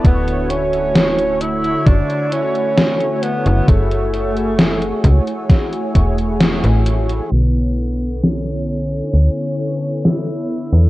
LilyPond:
<<
  \new Staff \with { instrumentName = "Ambient pad" } { \time 4/4 \key b \dorian \tempo 4 = 66 <fis' e'' cis'''>1 | <a fis'' gis'' e'''>1 | <d a' cis''' e'''>1 | }
  \new Staff \with { instrumentName = "Analog polysynth" } { \time 4/4 \key b \dorian <d a e' fis' cis''>2~ <d a e' fis' cis''>8 <d a e' fis' cis''>4. | <a e' fis' gis' cis''>2~ <a e' fis' gis' cis''>8 <a e' fis' gis' cis''>4. | <d b e'>2~ <d b e'>8 <d b e' a' cis''>4. | }
  \new Staff \with { instrumentName = "Tenor saxophone" } { \time 4/4 \key b \dorian b8 cis'4 e'8 d'8 cis'4 b8 | a4. r2 r8 | b4 cis'2 e'4 | }
  \new Staff \with { instrumentName = "FM bass" } { \clef bass \time 4/4 \key b \dorian d,,4.~ d,,16 r16 fis,,16 r4. fis,,16 | fis,,4~ fis,,16 r16 cis,16 r8. e,,8. a,,8 r16 | b,,4.~ b,,16 r16 d,16 r4. e,16 | }
  \new DrumStaff \with { instrumentName = "Drums" } \drummode { \time 4/4 <hh bd>16 hh16 hh16 hh16 <hh sn>16 hh16 hh16 hh16 <hh bd>16 hh16 hh16 hh16 <hh sn>16 hh16 hh16 hh16 | <hh bd>16 hh16 hh16 hh16 <hh sn>16 hh16 <hh bd>16 hh16 <hh bd sn>16 hh16 <hh bd>16 hh16 <hh sn>16 hh16 hh16 hh16 | r16 hh16 hh16 hh16 <hh sn>16 hh16 hh16 hh16 hh16 hh16 hh16 hh16 <hh sn>16 hh16 hh16 hh16 | }
>>